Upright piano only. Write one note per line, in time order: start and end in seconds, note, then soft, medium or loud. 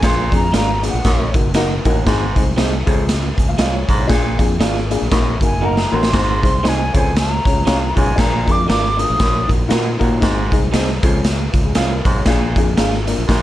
0.03 0.20 A#3 medium
0.03 0.19 D4 medium
0.03 0.20 F4 medium
0.03 0.20 G#4 loud
0.33 0.44 A#3 medium
0.33 0.44 D4 medium
0.33 0.44 F4 medium
0.33 0.44 G#4 medium
0.53 0.70 A#3 medium
0.53 0.70 D4 medium
0.53 0.70 F4 medium
0.53 0.70 A#4 medium
0.83 0.95 A#3 medium
0.83 0.95 D4 medium
0.83 0.95 F4 medium
0.83 0.95 G#4 medium
1.04 1.21 A#3 medium
1.04 1.21 D#4 medium
1.04 1.21 F#4 medium
1.04 1.21 A#4 medium
1.34 1.46 A#3 medium
1.34 1.46 D#4 medium
1.34 1.46 F#4 medium
1.34 1.46 A#4 medium
1.55 1.72 A#3 loud
1.55 1.72 D#4 loud
1.55 1.72 F#4 loud
1.55 1.72 A#4 loud
1.85 1.97 A#3 loud
1.85 1.97 D#4 loud
1.85 1.97 F#4 loud
1.85 1.97 A#4 loud
2.05 2.22 G#3 loud
2.05 2.23 C4 medium
2.05 2.23 D#4 loud
2.05 2.23 G#4 loud
2.35 2.47 G#3 medium
2.35 2.47 C4 medium
2.35 2.48 D#4 medium
2.35 2.48 G#4 medium
2.57 2.74 G#3 medium
2.57 2.74 C4 medium
2.57 2.74 D#4 medium
2.57 2.74 G#4 medium
2.86 3.25 G#3 medium
2.86 3.26 C#4 medium
2.86 3.25 F4 medium
2.86 3.26 G#4 loud
3.38 3.48 G#5 medium
3.48 3.58 F5 medium
3.58 3.73 D#5 medium
3.73 3.87 C#5 medium
3.88 3.98 C5 medium
3.98 4.23 C#5 medium
4.07 4.25 A#3 loud
4.07 4.25 D4 loud
4.07 4.26 F4 loud
4.07 4.26 G#4 loud
4.38 4.51 A#3 loud
4.38 4.51 D4 medium
4.38 4.51 F4 medium
4.38 4.51 G#4 loud
4.60 4.77 A#3 medium
4.60 4.77 D4 medium
4.60 4.77 F4 medium
4.60 4.77 G#4 loud
4.90 5.02 A#3 medium
4.90 5.02 D4 medium
4.90 5.02 F4 medium
4.90 5.03 G#4 loud
5.11 5.28 A#3 loud
5.11 5.28 D#4 medium
5.11 5.28 F#4 medium
5.11 5.28 A#4 loud
5.41 5.53 A#3 medium
5.41 5.53 D#4 medium
5.41 5.53 F#4 medium
5.41 5.53 A#4 medium
5.63 5.80 A#3 medium
5.63 5.80 D#4 medium
5.63 5.80 F#4 medium
5.63 5.80 A#4 loud
5.91 6.04 A#3 loud
5.91 6.04 D#4 medium
5.91 6.04 F#4 medium
5.91 6.04 A#4 loud
6.13 6.30 C4 medium
6.13 6.30 D#4 medium
6.13 6.30 G#4 medium
6.13 6.30 C5 loud
6.42 6.55 C4 medium
6.42 6.55 D#4 medium
6.42 6.55 G#4 medium
6.42 6.55 C5 medium
6.62 6.80 C4 medium
6.62 6.80 D#4 medium
6.62 6.81 G#4 medium
6.62 6.80 C5 medium
6.93 7.33 C#4 medium
6.93 7.33 F4 medium
6.93 7.33 G#4 medium
6.93 7.33 C#5 medium
7.45 7.57 C#4 medium
7.45 7.57 F4 medium
7.45 7.58 G#4 medium
7.45 7.57 C#5 medium
7.66 7.83 C#4 medium
7.66 7.83 F4 medium
7.66 7.83 G#4 medium
7.66 7.83 C#5 loud
7.95 8.08 C#4 medium
7.95 8.08 F4 medium
7.95 8.08 G#4 medium
7.95 8.08 C#5 loud
8.15 8.33 D4 loud
8.15 8.33 F4 medium
8.15 8.33 G#4 medium
8.15 8.34 A#4 medium
8.46 8.59 D4 medium
8.46 8.59 F4 medium
8.46 8.59 G#4 medium
8.46 8.59 A#4 medium
8.66 8.84 D4 medium
8.66 8.85 F4 medium
8.66 8.85 G#4 medium
8.66 8.85 A#4 medium
8.97 9.09 D4 medium
8.97 9.10 F4 medium
8.97 9.10 G#4 medium
8.97 9.10 A#4 medium
9.18 9.36 A#3 medium
9.18 9.36 D#4 medium
9.18 9.36 F#4 medium
9.18 9.36 A#4 medium
9.48 9.60 A#3 medium
9.48 9.60 D#4 medium
9.48 9.61 F#4 medium
9.48 9.61 A#4 medium
9.68 9.86 A#3 loud
9.68 9.86 D#4 loud
9.68 9.87 F#4 loud
9.68 9.87 A#4 loud
9.99 10.12 A#3 loud
9.99 10.12 D#4 loud
9.99 10.12 F#4 loud
9.99 10.12 A#4 loud
10.20 10.38 G#3 loud
10.20 10.38 C4 loud
10.20 10.38 D#4 loud
10.20 10.38 G#4 loud
10.51 10.63 G#3 medium
10.51 10.63 C4 medium
10.51 10.64 D#4 medium
10.51 10.64 G#4 loud
10.72 10.89 G#3 medium
10.72 10.90 C4 medium
10.72 10.90 D#4 medium
10.72 10.90 G#4 medium
11.02 11.42 G#3 medium
11.02 11.42 C#4 medium
11.02 11.42 F4 medium
11.02 11.42 G#4 loud
11.53 11.64 F4 medium
11.65 11.89 G#4 medium
11.91 12.05 A#4 medium
12.05 12.15 C5 medium
12.17 12.41 C#5 medium
12.27 12.43 A#3 loud
12.27 12.43 D4 loud
12.27 12.44 F4 loud
12.27 12.44 G#4 loud
12.57 12.68 A#3 loud
12.57 12.69 D4 medium
12.57 12.69 F4 medium
12.57 12.69 G#4 loud
12.78 12.94 A#3 medium
12.78 12.94 D4 medium
12.78 12.95 F4 medium
12.78 12.95 G#4 loud
13.07 13.19 A#3 medium
13.07 13.19 D4 medium
13.07 13.19 F4 medium
13.07 13.20 A#4 medium
13.28 13.42 A#3 medium
13.28 13.42 D#4 medium
13.28 13.42 F#4 medium
13.28 13.42 A#4 loud